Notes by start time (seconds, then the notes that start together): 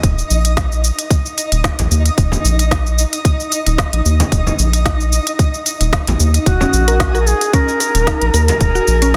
Already playing: D#4 D#5
0.03 D#1, kick, closed hi-hat, shaker
0.18 shaker
0.30 A#1, shaker
0.45 closed hi-hat, shaker
0.57 kick, snare, closed hi-hat, shaker
0.72 shaker
0.84 shaker
0.99 closed hi-hat, shaker
1.10 kick, closed hi-hat, shaker
1.26 shaker
1.38 closed hi-hat, shaker
1.52 D#1, closed hi-hat, shaker
1.64 kick, snare, closed hi-hat, shaker
1.79 A#1, closed hi-hat, frame drum, shaker
1.91 D#2, shaker
2.06 closed hi-hat, shaker
2.18 D#1, kick, closed hi-hat, shaker
2.32 frame drum, shaker
2.45 A#1, shaker
2.59 closed hi-hat, shaker
2.71 kick, snare, closed hi-hat, shaker
2.86 shaker
2.99 shaker
3.13 closed hi-hat, shaker
3.25 kick, closed hi-hat, shaker
3.40 shaker
3.52 closed hi-hat, shaker
3.67 D#1, closed hi-hat, shaker
3.78 kick, snare, closed hi-hat, shaker
3.93 A#1, closed hi-hat
4.05 D#2, shaker
4.20 closed hi-hat, frame drum, shaker
4.32 D#1, kick, closed hi-hat, shaker
4.47 frame drum, shaker
4.59 A#1, shaker
4.73 closed hi-hat, shaker
4.86 kick, snare, closed hi-hat, shaker
5.00 shaker
5.13 shaker
5.27 closed hi-hat, shaker
5.39 kick, closed hi-hat, shaker
5.54 shaker
5.66 closed hi-hat, shaker
5.80 D#1, closed hi-hat, shaker
5.93 kick, snare, closed hi-hat, shaker
6.07 A#1, closed hi-hat, frame drum, shaker
6.20 D#2, shaker
6.34 closed hi-hat, shaker
6.46 D#1 F#4 G#4, kick, closed hi-hat, shaker
6.61 C#4, frame drum, shaker
6.73 A#1, shaker
6.88 A#4, closed hi-hat, shaker
7.00 kick, snare, closed hi-hat, shaker
7.15 A#4, shaker
7.21 A#4
7.27 G#4, shaker
7.41 closed hi-hat, shaker
7.53 C#4 A#4, kick, closed hi-hat, shaker
7.68 shaker
7.80 A#4, closed hi-hat, shaker
7.95 D#1, closed hi-hat, shaker
8.07 D#4, kick, snare, closed hi-hat, shaker
8.22 A#1, closed hi-hat
8.34 D#2 A#4, shaker
8.48 closed hi-hat, frame drum, shaker
8.61 D#1 A#4, kick, closed hi-hat, shaker
8.75 F#4, shaker
8.88 A#1, shaker
9.02 C#4, closed hi-hat, shaker